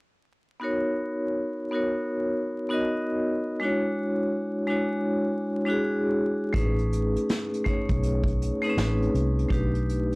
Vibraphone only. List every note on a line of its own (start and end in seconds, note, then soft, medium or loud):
0.60 1.44 B3 medium
0.60 1.44 D#4 medium
0.60 1.45 F#4 medium
0.60 1.45 A#4 medium
0.64 1.46 C#5 medium
1.71 2.41 B3 medium
1.71 2.42 D#4 medium
1.71 2.42 F#4 medium
1.71 2.43 A#4 medium
1.75 2.43 C#5 medium
2.69 3.35 B3 medium
2.69 3.36 D#4 medium
2.69 3.36 F#4 medium
2.69 3.37 A#4 medium
2.73 3.38 D#5 medium
3.60 4.42 G#3 medium
3.60 4.42 D4 medium
3.60 4.43 E4 medium
3.60 4.43 F#4 medium
3.64 4.44 C#5 medium
4.67 5.37 G#3 medium
4.67 5.38 D4 medium
4.67 5.38 E4 medium
4.67 5.39 F#4 medium
4.71 5.39 C#5 medium
5.65 6.32 G#3 medium
5.65 6.32 D4 medium
5.65 6.33 E4 medium
5.65 6.33 F#4 medium
5.70 6.34 G#4 loud
6.53 7.36 A3 medium
6.53 7.37 C#4 medium
6.53 7.37 D#4 medium
6.53 7.38 G#4 medium
6.57 7.39 B4 medium
7.64 8.34 A3 medium
7.64 8.34 C#4 medium
7.64 8.35 D#4 medium
7.64 8.36 G#4 medium
7.69 8.36 C#5 medium
8.62 9.28 A3 medium
8.62 8.68 C4 medium
8.62 9.29 D#4 medium
8.62 9.30 G#4 medium
8.66 9.32 C#4 medium
8.66 9.30 B4 medium
9.48 10.15 A3 medium
9.48 10.15 D4 medium
9.48 10.15 D#4 medium
9.48 10.15 G4 medium
9.53 10.15 B4 medium